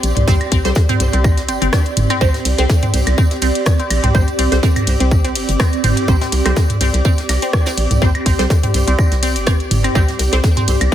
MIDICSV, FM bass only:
0, 0, Header, 1, 2, 480
1, 0, Start_track
1, 0, Tempo, 483871
1, 274, Time_signature, 4, 2, 24, 8
1, 10860, End_track
2, 0, Start_track
2, 0, Title_t, "FM bass"
2, 0, Program_c, 0, 39
2, 34, Note_on_c, 0, 34, 96
2, 127, Note_off_c, 0, 34, 0
2, 164, Note_on_c, 0, 36, 93
2, 241, Note_off_c, 0, 36, 0
2, 273, Note_on_c, 0, 36, 97
2, 367, Note_off_c, 0, 36, 0
2, 513, Note_on_c, 0, 36, 93
2, 607, Note_off_c, 0, 36, 0
2, 645, Note_on_c, 0, 36, 96
2, 722, Note_off_c, 0, 36, 0
2, 992, Note_on_c, 0, 36, 91
2, 1086, Note_off_c, 0, 36, 0
2, 1124, Note_on_c, 0, 36, 106
2, 1473, Note_on_c, 0, 31, 91
2, 1488, Note_off_c, 0, 36, 0
2, 1566, Note_off_c, 0, 31, 0
2, 1604, Note_on_c, 0, 31, 91
2, 1681, Note_off_c, 0, 31, 0
2, 1953, Note_on_c, 0, 31, 97
2, 2046, Note_off_c, 0, 31, 0
2, 2194, Note_on_c, 0, 36, 99
2, 2287, Note_off_c, 0, 36, 0
2, 2433, Note_on_c, 0, 36, 91
2, 2526, Note_off_c, 0, 36, 0
2, 2565, Note_on_c, 0, 36, 95
2, 2642, Note_off_c, 0, 36, 0
2, 2913, Note_on_c, 0, 36, 94
2, 3006, Note_off_c, 0, 36, 0
2, 3045, Note_on_c, 0, 36, 101
2, 3122, Note_off_c, 0, 36, 0
2, 3393, Note_on_c, 0, 36, 76
2, 3486, Note_off_c, 0, 36, 0
2, 3872, Note_on_c, 0, 34, 96
2, 3966, Note_off_c, 0, 34, 0
2, 4004, Note_on_c, 0, 36, 91
2, 4081, Note_off_c, 0, 36, 0
2, 4113, Note_on_c, 0, 36, 100
2, 4206, Note_off_c, 0, 36, 0
2, 4352, Note_on_c, 0, 36, 94
2, 4446, Note_off_c, 0, 36, 0
2, 4484, Note_on_c, 0, 36, 93
2, 4561, Note_off_c, 0, 36, 0
2, 4832, Note_on_c, 0, 36, 94
2, 4926, Note_off_c, 0, 36, 0
2, 4964, Note_on_c, 0, 36, 106
2, 5312, Note_on_c, 0, 31, 90
2, 5327, Note_off_c, 0, 36, 0
2, 5406, Note_off_c, 0, 31, 0
2, 5444, Note_on_c, 0, 31, 89
2, 5521, Note_off_c, 0, 31, 0
2, 5792, Note_on_c, 0, 31, 95
2, 5886, Note_off_c, 0, 31, 0
2, 6033, Note_on_c, 0, 36, 97
2, 6126, Note_off_c, 0, 36, 0
2, 6273, Note_on_c, 0, 36, 93
2, 6366, Note_off_c, 0, 36, 0
2, 6404, Note_on_c, 0, 36, 93
2, 6481, Note_off_c, 0, 36, 0
2, 6752, Note_on_c, 0, 36, 92
2, 6846, Note_off_c, 0, 36, 0
2, 6884, Note_on_c, 0, 36, 101
2, 6961, Note_off_c, 0, 36, 0
2, 7232, Note_on_c, 0, 36, 78
2, 7326, Note_off_c, 0, 36, 0
2, 7713, Note_on_c, 0, 34, 93
2, 7806, Note_off_c, 0, 34, 0
2, 7844, Note_on_c, 0, 36, 94
2, 7921, Note_off_c, 0, 36, 0
2, 7953, Note_on_c, 0, 36, 99
2, 8046, Note_off_c, 0, 36, 0
2, 8193, Note_on_c, 0, 36, 93
2, 8286, Note_off_c, 0, 36, 0
2, 8324, Note_on_c, 0, 36, 98
2, 8401, Note_off_c, 0, 36, 0
2, 8673, Note_on_c, 0, 36, 93
2, 8766, Note_off_c, 0, 36, 0
2, 8804, Note_on_c, 0, 36, 102
2, 8881, Note_off_c, 0, 36, 0
2, 9044, Note_on_c, 0, 36, 88
2, 9284, Note_on_c, 0, 31, 92
2, 9299, Note_off_c, 0, 36, 0
2, 9524, Note_on_c, 0, 36, 82
2, 9539, Note_off_c, 0, 31, 0
2, 9601, Note_off_c, 0, 36, 0
2, 9633, Note_on_c, 0, 31, 104
2, 9810, Note_off_c, 0, 31, 0
2, 9873, Note_on_c, 0, 36, 100
2, 9967, Note_off_c, 0, 36, 0
2, 10113, Note_on_c, 0, 36, 93
2, 10206, Note_off_c, 0, 36, 0
2, 10245, Note_on_c, 0, 36, 95
2, 10322, Note_off_c, 0, 36, 0
2, 10593, Note_on_c, 0, 36, 94
2, 10686, Note_off_c, 0, 36, 0
2, 10725, Note_on_c, 0, 36, 100
2, 10802, Note_off_c, 0, 36, 0
2, 10860, End_track
0, 0, End_of_file